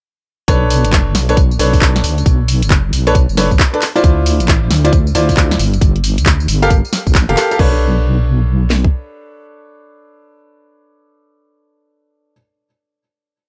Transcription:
0.48 0.86 B1 loud
0.48 1.15 D4 loud
0.48 1.15 A4 medium
0.48 1.15 B4 medium
0.48 1.15 C#5 loud
0.48 kick loud
0.48 closed hi-hat medium
0.48 tambourine soft
0.70 open hi-hat loud
0.70 tambourine medium
0.85 1.13 F#1 medium
0.85 closed hi-hat medium
0.85 tambourine soft
0.93 kick loud
0.93 clap loud
0.93 tambourine soft
1.15 1.58 B1 medium
1.15 snare medium
1.15 open hi-hat loud
1.15 tambourine medium
1.29 1.35 D4 medium
1.29 1.35 A4 medium
1.29 1.35 B4 medium
1.29 1.35 C#5 medium
1.29 closed hi-hat medium
1.29 tambourine soft
1.37 kick loud
1.37 closed hi-hat medium
1.37 tambourine soft
1.51 tambourine soft
1.59 2.02 B1 loud
1.59 3.03 D4 medium
1.59 3.03 A4 medium
1.59 3.03 B4 medium
1.59 3.03 C#5 medium
1.59 open hi-hat loud
1.59 tambourine medium
1.73 kick medium
1.73 open hi-hat medium
1.73 tambourine soft
1.81 kick loud
1.81 clap loud
1.81 tambourine soft
1.96 snare medium
1.96 closed hi-hat medium
2.04 2.24 D2 medium
2.04 open hi-hat loud
2.04 tambourine medium
2.18 closed hi-hat soft
2.18 tambourine soft
2.26 2.64 B1 loud
2.26 kick loud
2.26 closed hi-hat medium
2.26 tambourine soft
2.48 open hi-hat loud
2.48 tambourine medium
2.62 2.91 F#1 medium
2.62 closed hi-hat medium
2.62 tambourine soft
2.70 kick loud
2.70 clap loud
2.70 tambourine soft
2.93 3.26 B1 medium
2.93 open hi-hat loud
2.93 tambourine medium
3.07 3.13 D4 loud
3.07 3.13 A4 medium
3.07 3.13 B4 medium
3.07 3.13 C#5 loud
3.07 closed hi-hat medium
3.07 tambourine soft
3.15 kick loud
3.15 closed hi-hat medium
3.15 tambourine soft
3.29 3.53 F#1 medium
3.29 tambourine soft
3.37 3.48 D4 medium
3.37 3.48 A4 medium
3.37 3.48 B4 medium
3.37 3.48 C#5 medium
3.37 snare medium
3.37 open hi-hat loud
3.37 tambourine medium
3.51 3.58 B1 loud
3.51 kick medium
3.51 tambourine soft
3.59 kick loud
3.59 clap loud
3.59 open hi-hat medium
3.59 tambourine soft
3.73 3.80 D4 medium
3.73 3.80 A4 medium
3.73 3.80 B4 medium
3.73 3.80 D5 medium
3.73 closed hi-hat soft
3.82 clap medium
3.82 open hi-hat loud
3.82 tambourine medium
3.96 4.81 E4 medium
3.96 4.81 F4 medium
3.96 4.81 C5 medium
3.96 4.81 D5 loud
3.96 closed hi-hat soft
3.96 tambourine soft
4.04 4.42 D2 loud
4.04 kick loud
4.04 closed hi-hat medium
4.04 tambourine soft
4.26 open hi-hat loud
4.26 tambourine medium
4.40 4.69 A1 medium
4.40 closed hi-hat medium
4.40 tambourine soft
4.48 kick loud
4.48 clap loud
4.48 tambourine soft
4.71 5.13 D2 medium
4.71 snare medium
4.71 open hi-hat loud
4.71 tambourine medium
4.84 4.91 E4 medium
4.84 4.91 F4 medium
4.84 4.91 C5 medium
4.84 4.91 D5 medium
4.84 closed hi-hat medium
4.84 tambourine soft
4.93 kick loud
4.93 closed hi-hat medium
4.93 tambourine soft
5.07 tambourine soft
5.15 5.58 D2 loud
5.15 5.58 E4 medium
5.15 5.58 F4 medium
5.15 5.58 C5 medium
5.15 5.58 D5 medium
5.15 open hi-hat loud
5.15 tambourine medium
5.29 kick medium
5.29 open hi-hat medium
5.29 tambourine soft
5.37 kick loud
5.37 clap loud
5.37 tambourine soft
5.51 snare medium
5.51 closed hi-hat medium
5.59 5.80 G1 loud
5.59 open hi-hat loud
5.59 tambourine medium
5.74 closed hi-hat soft
5.74 tambourine soft
5.81 6.19 G1 loud
5.81 kick loud
5.81 closed hi-hat medium
5.81 tambourine soft
5.96 closed hi-hat soft
6.04 open hi-hat loud
6.04 tambourine medium
6.18 6.47 D2 medium
6.18 closed hi-hat medium
6.18 tambourine soft
6.26 kick loud
6.26 clap loud
6.26 tambourine soft
6.40 tambourine soft
6.48 6.82 G1 medium
6.48 open hi-hat loud
6.48 tambourine medium
6.62 6.68 G4 loud
6.62 6.68 A4 medium
6.62 6.68 A#4 medium
6.62 6.68 F5 loud
6.62 closed hi-hat medium
6.62 tambourine soft
6.70 kick loud
6.70 closed hi-hat medium
6.70 tambourine soft
6.85 tambourine soft
6.93 snare medium
6.93 open hi-hat loud
6.93 tambourine medium
7.07 7.26 A#1 medium
7.07 kick medium
7.07 tambourine soft
7.15 kick loud
7.15 clap loud
7.15 open hi-hat medium
7.15 tambourine soft
7.29 7.36 F1 loud
7.29 7.35 G4 medium
7.29 7.35 A4 medium
7.29 7.35 A#4 medium
7.29 7.35 F5 loud
7.29 closed hi-hat soft
7.37 7.48 G4 medium
7.37 7.48 A4 medium
7.37 7.48 A#4 medium
7.37 7.48 F5 loud
7.37 clap medium
7.37 open hi-hat loud
7.37 tambourine medium
7.51 7.57 G4 medium
7.51 7.57 A4 medium
7.51 7.57 A#4 medium
7.51 7.57 F5 medium
7.51 closed hi-hat soft
7.51 tambourine soft
7.59 8.89 B1 loud
7.59 12.33 D4 medium
7.59 12.33 A4 medium
7.59 12.33 B4 medium
7.59 12.33 C#5 loud
7.59 kick loud
7.59 crash medium
8.70 snare medium
8.84 kick medium

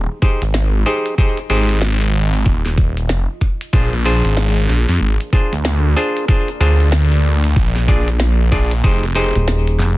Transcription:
0.00 0.19 D#4 medium
0.00 5.52 F4 medium
0.00 0.19 G4 medium
0.00 0.19 G#4 medium
0.00 0.19 C5 loud
0.00 3.73 D#5 medium
0.22 0.43 D#4 medium
0.22 0.43 G4 medium
0.22 0.43 G#4 medium
0.22 0.43 C5 medium
0.22 kick loud
0.42 0.84 G#1 medium
0.42 closed hi-hat medium
0.54 snare loud
0.86 1.14 D#4 medium
0.86 1.14 G4 medium
0.86 1.14 G#4 medium
0.86 1.14 C5 loud
1.06 closed hi-hat medium
1.18 1.39 D#4 medium
1.18 1.39 G4 medium
1.18 1.39 G#4 medium
1.18 1.39 C5 medium
1.18 kick loud
1.37 closed hi-hat soft
1.50 2.44 G#1 loud
1.50 1.79 D#4 medium
1.50 1.79 G4 medium
1.50 1.79 G#4 medium
1.50 1.79 C5 loud
1.69 closed hi-hat medium
1.82 snare loud
2.01 closed hi-hat medium
2.34 closed hi-hat medium
2.46 2.62 D#1 loud
2.46 kick loud
2.65 3.07 D#1 medium
2.65 snare soft
2.65 closed hi-hat medium
2.78 kick loud
2.97 closed hi-hat medium
3.09 3.26 F1 loud
3.09 snare loud
3.41 kick medium
3.61 closed hi-hat medium
3.73 3.90 A#1 medium
3.73 3.94 D4 medium
3.73 3.94 F4 medium
3.73 3.94 G#4 medium
3.73 3.94 C5 medium
3.73 kick loud
3.93 4.22 A#1 medium
3.93 closed hi-hat soft
4.05 5.30 D4 medium
4.05 5.30 F4 medium
4.05 5.30 G#4 medium
4.05 5.30 C5 loud
4.14 9.98 A#4 medium
4.25 4.67 G#1 loud
4.25 closed hi-hat medium
4.37 snare loud
4.57 closed hi-hat medium
4.69 4.86 A#1 medium
4.69 snare soft
4.81 8.84 D5 loud
4.89 4.99 F2 medium
4.89 closed hi-hat medium
5.01 5.17 G#1 loud
5.21 closed hi-hat medium
5.33 5.54 D4 medium
5.33 5.54 F4 medium
5.33 5.54 G#4 medium
5.33 5.54 C5 medium
5.33 kick loud
5.53 5.95 D2 medium
5.53 closed hi-hat medium
5.65 snare loud
5.96 6.25 D4 loud
5.96 6.25 F4 medium
5.96 6.25 G#4 medium
5.96 6.25 C5 loud
6.17 closed hi-hat medium
6.28 6.49 D4 medium
6.28 6.49 F4 medium
6.28 6.49 G#4 medium
6.28 6.49 C5 medium
6.28 kick loud
6.48 closed hi-hat soft
6.60 7.54 D2 medium
6.60 6.89 D4 medium
6.60 6.89 F4 medium
6.60 6.89 G#4 medium
6.60 6.89 C5 loud
6.80 closed hi-hat medium
6.92 snare loud
7.12 closed hi-hat soft
7.44 closed hi-hat medium
7.56 8.50 A#1 loud
7.56 kick loud
7.76 snare soft
7.76 closed hi-hat soft
7.88 8.09 D4 medium
7.88 8.09 F4 medium
7.88 8.09 G#4 medium
7.88 8.09 D5 medium
7.88 kick loud
8.08 closed hi-hat medium
8.20 snare loud
8.52 8.82 A#1 loud
8.52 8.73 D4 medium
8.52 8.73 F4 medium
8.52 8.73 G#4 medium
8.52 8.73 D5 medium
8.52 kick medium
8.71 closed hi-hat medium
8.84 9.01 F1 loud
8.84 9.05 D#4 medium
8.84 9.05 G4 medium
8.84 9.05 G#4 medium
8.84 9.05 C5 medium
8.84 kick loud
9.03 9.32 F1 loud
9.03 closed hi-hat soft
9.15 9.98 D#4 medium
9.15 9.98 G4 medium
9.15 9.98 G#4 medium
9.15 9.98 C5 loud
9.36 9.78 D#1 loud
9.36 closed hi-hat medium
9.41 9.98 F4 medium
9.48 snare loud
9.67 closed hi-hat soft
9.79 9.96 F1 medium
9.79 snare soft

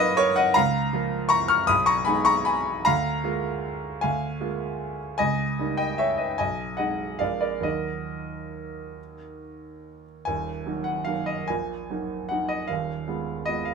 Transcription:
0.00 0.58 A#2 medium
0.00 0.52 F#3 medium
0.00 0.52 A#3 medium
0.00 0.52 D#4 medium
0.00 0.17 B4 medium
0.00 0.17 C#5 loud
0.00 0.18 D#5 loud
0.00 0.56 F5 loud
0.17 0.36 A#4 medium
0.17 0.37 C#5 loud
0.36 0.55 D#5 medium
0.36 0.55 F#5 loud
0.54 0.92 C#2 medium
0.54 1.27 F5 loud
0.54 1.28 A#5 loud
0.93 1.65 F3 medium
0.93 1.65 A#3 medium
0.93 1.65 F4 medium
1.29 1.48 A#5 loud
1.29 1.48 C#6 loud
1.48 1.67 C#6 medium
1.48 1.68 F6 loud
1.67 2.06 B1 medium
1.67 1.86 B5 loud
1.67 1.87 D#6 loud
1.86 2.05 A#5 medium
1.86 2.06 C#6 loud
2.05 2.82 G#3 medium
2.05 2.83 B3 medium
2.05 2.83 D#4 medium
2.05 2.25 G#5 medium
2.05 2.25 B5 loud
2.25 2.45 A#5 loud
2.25 2.46 C#6 loud
2.45 2.83 G#5 medium
2.45 2.85 B5 loud
2.85 3.23 D2 medium
2.85 3.99 F5 loud
2.85 4.02 A#5 loud
3.24 3.99 G#3 medium
3.24 3.99 A#3 medium
3.24 3.99 F4 medium
4.01 4.39 D2 medium
4.01 4.96 F5 medium
4.01 4.99 G#5 loud
4.40 5.16 G#3 medium
4.40 5.17 A#3 soft
4.40 5.17 F4 soft
5.18 5.58 C#2 medium
5.18 5.75 D#5 medium
5.18 5.78 G#5 loud
5.59 6.36 G3 soft
5.59 6.36 A#3 soft
5.59 6.36 D#4 soft
5.77 5.98 D#5 medium
5.77 5.99 G5 medium
5.98 6.18 C#5 medium
5.98 6.19 E5 medium
6.18 6.38 B4 soft
6.18 6.38 D#5 medium
6.38 6.78 B1 medium
6.38 6.76 D#5 medium
6.38 6.78 G#5 loud
6.77 7.17 G#3 soft
6.77 7.17 D#4 soft
6.77 7.17 D#5 medium
6.77 7.20 F#5 medium
7.19 7.64 A#1 medium
7.19 7.61 G#3 soft
7.19 7.61 A#3 soft
7.19 7.62 D4 soft
7.19 7.39 D5 medium
7.19 7.42 F5 medium
7.41 7.63 A#4 soft
7.41 7.64 D5 medium
7.60 10.21 D#2 soft
7.60 10.21 F#3 soft
7.60 10.22 A#3 soft
7.60 10.23 D#4 soft
7.60 10.02 A#4 medium
7.60 10.05 D#5 medium
10.25 10.65 D#1 medium
10.25 10.65 D#2 medium
10.25 10.85 G#5 medium
10.66 11.03 F#3 soft
10.66 11.03 A#3 soft
10.66 11.03 D#4 soft
10.84 11.06 F#5 medium
11.05 11.46 F#3 soft
11.05 11.46 A#3 soft
11.05 11.46 D#4 soft
11.05 11.27 F5 medium
11.26 11.49 D#5 medium
11.48 11.90 A#1 soft
11.48 11.90 A#2 medium
11.48 12.30 G#5 medium
11.90 12.27 F#3 soft
11.90 12.27 A#3 soft
11.90 12.27 D#4 soft
12.29 12.66 F#3 soft
12.29 12.66 A#3 soft
12.29 12.66 D#4 soft
12.29 12.50 F#5 medium
12.49 12.69 D#5 medium
12.68 13.07 D#1 medium
12.68 13.07 D#2 medium
12.68 13.46 F5 medium
13.07 13.43 G#3 soft
13.07 13.44 B3 soft
13.07 13.44 F4 soft
13.46 13.74 G#3 soft
13.46 13.74 B3 soft
13.46 13.74 F4 soft
13.46 13.66 D#5 medium
13.65 13.74 F5 medium

